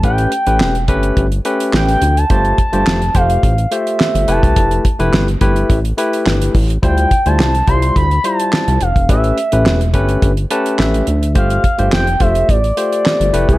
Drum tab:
HH |xxxx-xxxxxxx-xxx|xxxx-xxxxxxx-xxx|xxxx-xxxxxxx-xox|xxxx-xxxxxxx-xxx|
CP |----x-------x---|----x-------x---|----x-------x---|----x-------x---|
SD |----o-------o---|----o-------o---|----o-------o---|----o-------o---|
BD |o-----o-o-------|o-o---o-o------o|o-o---o-o-----o-|o-o---o-o------o|

HH |xxxx-xxxxxxx-xxx|xxxx-xxxxxxx-xxx|
CP |----x-------x---|----x-------x---|
SD |----o-------o---|----o-------o---|
BD |o-----o-o-------|o-o---o-o------o|